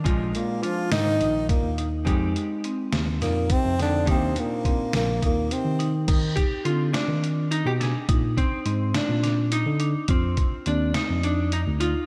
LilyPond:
<<
  \new Staff \with { instrumentName = "Hollow-body jazz guitar" } { \time 7/8 \key f \dorian \tempo 4 = 105 <aes c' ees' f'>2.~ <aes c' ees' f'>8 | <aes c' ees' g'>2.~ <aes c' ees' g'>8 | <bes d' ees' g'>2.~ <bes d' ees' g'>8 | r8 g'8 f'8 d'4 ees'16 g'16 aes'8~ |
aes'8 c'4 d'4 ees'4 | c'4 d'8 ees'8 d'8 ees'8 f'8 | }
  \new Staff \with { instrumentName = "Marimba" } { \time 7/8 \key f \dorian f'4 d'4 ees'4 ees'8 | ees'4 c'4 ees'4 ees'8 | ees'4 c'4 ees'4 ees'8 | ees'4 c'4 d'4 d'8 |
ees'4 c'4 d'4 d'8 | f'4 c'4 ees'4 ees'8 | }
  \new Staff \with { instrumentName = "Tenor saxophone" } { \time 7/8 \key f \dorian r8 bes8 f'8 ees'4 bes8. r16 | r2 bes8 c'8 d'8 | c'8 bes4 bes8 bes8 c'8. r16 | r2. r8 |
r2. r8 | r2. r8 | }
  \new Staff \with { instrumentName = "Trombone" } { \clef bass \time 7/8 \key f \dorian r8 bes,8 f8 ees4 bes,8. r16 | r2 bes,8 c8 d8 | c8 bes,4 bes,8 bes,8 c8. r16 | r2. r8 |
r2. r8 | r2. r8 | }
  \new Staff \with { instrumentName = "Tine electric piano" } { \clef bass \time 7/8 \key f \dorian bes,,8 r4 aes,8 bes,,8 r16 ees,8. | f,8 r4 ees,8 f,8 r16 f,8. | ees,8 r4 bes,,8 ees,8 r16 ees8. | ees8 r8 d8 r16 ees4 ces8 r16 |
bes,8 r8 aes,8 r16 bes,4 d8 r16 | f,8 r8 ees,8 r16 f,4 d,8 r16 | }
  \new DrumStaff \with { instrumentName = "Drums" } \drummode { \time 7/8 <hh bd>8 hh8 hh8 <hh sn>8 hh8 <hh bd>8 hh8 | <hh bd>8 hh8 hh8 <hh sn>8 <hh sn>8 <hh bd>8 <hh sn>8 | <hh bd>8 hh8 <hh bd>8 <hh sn>8 <hh bd>8 hh8 hh8 | <cymc hh bd>8 <hh bd>8 hh8 <hh sn>8 hh8 hh8 <hh sn>8 |
<hh bd>8 <hh bd>8 hh8 <hh sn>8 <hh sn>8 hh8 hh8 | <hh bd>8 <hh bd>8 hh8 <hh sn>8 hh8 hh8 hh8 | }
>>